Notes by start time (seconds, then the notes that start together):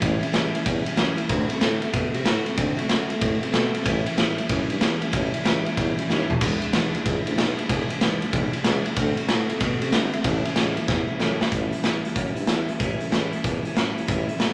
0.01 A1 A2 E3 G3 C#4 E4, kick, ride
0.21 A1 G3 C#4 E4, ride
0.32 C#2 A2 E3 G3 C#4 E4, snare, ride
0.53 C#2 G3 C#4 E4, ride
0.64 E2 E3 G3 C#4 E4, kick, ride
0.85 E2 G3 C#4 E4, ride
0.96 F#2 A2 E3 G3 C#4 E4, snare, ride
1.17 F#2 G3 C#4 E4, ride
1.29 D2 D3 A3 C4 F#4, kick, ride
1.49 D2 A3 C4 F#4, ride
1.60 A2 D3 A3 C4 F#4, snare, ride
1.81 A2 A3 C4 F#4, ride
1.93 B2 D3 A3 C4 F#4, kick, ride
2.13 C3 A3 C4 F#4, ride
2.24 A2 D3 A3 C4 F#4, snare, ride
2.44 A2 A3 C4 F#4, ride
2.56 D2 D3 A3 C4 F#4, kick, ride
2.77 D2 A3 C4 F#4, ride
2.89 F#2 D3 A3 C4 F#4, snare, ride
3.09 F#2 A3 C4 F#4, ride
3.21 A2 D3 A3 C4 F#4, kick, ride
3.41 A2 A3 C4 F#4, ride
3.53 B2 D3 A3 C4 F#4, snare, ride
3.73 B2 A3 C4 F#4, ride
3.84 A1 A2 E3 G3 C#4 E4, kick, ride
4.05 A1 G3 C#4 E4, ride
4.17 E2 A2 E3 G3 C#4 E4, snare, ride
4.37 E2 G3 C#4 E4, ride
4.48 F#2 E3 G3 C#4 E4, kick, ride
4.69 G2 G3 C#4 E4, ride
4.81 E2 A2 E3 G3 C#4 E4, snare, ride
5.00 G3 C#4 E4, ride
5.12 A1 A2 E3 G3 C#4 E4, kick, ride
5.33 A1 G3 C#4 E4, ride
5.43 C#2 A2 E3 G3 C#4 E4, snare, ride
5.65 C#2 G3 C#4 E4, ride
5.77 E2 E3 G3 C#4 E4, kick, ride
5.97 E2 G3 C#4 E4, ride
6.08 D#2 A2 E3 G3 C#4 E4, snare
6.29 D#2 G3 C#4 E4, floor tom
6.41 E1 E2 B2 E3 G#3 D4 E4, kick, crash, ride
6.61 E1 E3 G#3 D4 E4, ride
6.73 B1 E2 B2 E3 G#3 D4 E4, snare, ride
6.93 B1 E3 G#3 D4 E4, ride
7.06 C#2 E3 G#3 D4 E4, kick, ride
7.26 D2 E3 G#3 D4 E4, ride
7.37 B1 E2 B2 E3 G#3 D4 E4, snare, ride
7.57 B1 E3 G#3 D4 E4, ride
7.69 E1 E2 B2 E3 G#3 D4 E4, kick, ride
7.89 E1 E3 G#3 D4 E4, ride
8.01 G#1 E2 B2 E3 G#3 D4 E4, snare, ride
8.21 G#1 E3 G#3 D4 E4, ride
8.32 B1 E3 G#3 D4 E4, kick, ride
8.52 B1 E3 G#3 D4 E4, ride
8.64 C#2 E2 B2 E3 G#3 D4 E4, snare, ride
8.85 C#2 E3 G#3 D4 E4, ride
8.96 D2 D3 A3 C4 F#4, kick, ride
9.16 D2 A3 C4 F#4, ride
9.28 A2 D3 A3 C4 F#4, snare, ride
9.49 A2 A3 C4 F#4, ride
9.60 B2 D3 A3 C4 F#4, kick, ride
9.81 C3 A3 C4 F#4, ride
9.92 G1 D3 A3 C4 F#4, snare, ride
10.12 G1 A3 C4 F#4, ride
10.24 A1 A2 E3 G3 C#4 E4, kick, ride
10.44 A1 G3 C#4 E4, ride
10.56 C#2 A2 E3 G3 C#4 E4, snare, ride
10.76 C#2 G3 C#4 E4, ride
10.87 E2 E3 G3 C#4 E4, kick, snare
11.08 E2 G3 C#4 E4
11.19 F#2 A2 E3 G3 C#4 E4, snare
11.39 F#2 G3 C#4 E4, snare
11.51 A1 A2 E3 G3 C#4 E4, kick, closed hi-hat
11.71 G3 C#4 E4, closed hi-hat
11.83 E2 A2 E3 G3 C#4 E4, snare, closed hi-hat
12.03 E2 G3 C#4 E4, closed hi-hat
12.14 F#2 E3 G3 C#4 E4, kick, closed hi-hat
12.35 G2 G3 C#4 E4, closed hi-hat
12.47 E2 A2 E3 G3 C#4 E4, snare, closed hi-hat
12.67 E2 G3 C#4 E4, closed hi-hat
12.79 A1 A2 E3 G3 C#4 E4, kick, closed hi-hat
12.99 A1 G3 C#4 E4, closed hi-hat
13.10 C#2 A2 E3 G3 C#4 E4, snare, closed hi-hat
13.31 C#2 G3 C#4 E4, closed hi-hat
13.43 E2 E3 G3 C#4 E4, kick, closed hi-hat
13.63 E2 G3 C#4 E4, closed hi-hat
13.74 F#2 A2 E3 G3 C#4 E4, snare, closed hi-hat
13.95 F#2 G3 C#4 E4, closed hi-hat
14.07 A1 A2 E3 G3 C#4 E4, kick, closed hi-hat
14.28 A1 G3 C#4 E4, closed hi-hat
14.39 E2 A2 E3 G3 C#4 E4, snare, closed hi-hat